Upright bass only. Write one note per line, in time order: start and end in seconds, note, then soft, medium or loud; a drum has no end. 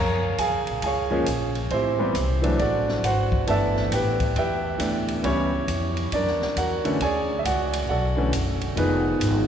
0.00 0.37 F#2 medium
0.38 0.54 F2 medium
0.52 0.67 C#2 soft
0.68 0.82 A#1 medium
0.82 1.25 C#2 medium
1.26 1.69 A#1 medium
1.71 2.14 A1 medium
2.15 2.58 C2 medium
2.60 3.02 A1 medium
3.03 3.46 G#1 medium
3.47 3.90 G1 medium
3.91 4.34 A1 medium
4.36 4.79 E2 medium
4.79 5.22 D2 medium
5.24 5.67 C#2 medium
5.68 6.10 F2 medium
6.12 6.26 F#2 medium
6.26 6.40 E2 medium
6.41 6.55 C#2 medium
6.57 6.83 E2 medium
6.86 muted upright bass stroke soft
7.01 7.43 D2 medium
7.45 7.87 C#2 medium
7.89 8.31 B1 medium
8.32 8.75 F#1 medium
8.77 9.19 F1 medium
9.20 9.46 G#1 medium